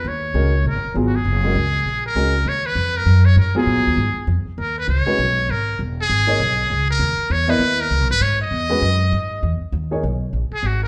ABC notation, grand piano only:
X:1
M:4/4
L:1/8
Q:"Swing" 1/4=198
K:Ebphr
V:1 name="Grand piano"
z2 [A,DGB] z3 [G,C=FA] z | z [A,DGB] z4 [A,DGB] z | z6 z [G,C=FA]- | [G,C=FA]2 z6 |
z [A,DGc] z6 | z [B,EAd] z6 | z [CFBe] z6 | z [A,DGc] z6 |
[K:G#m] z [A,DGc] z6 |]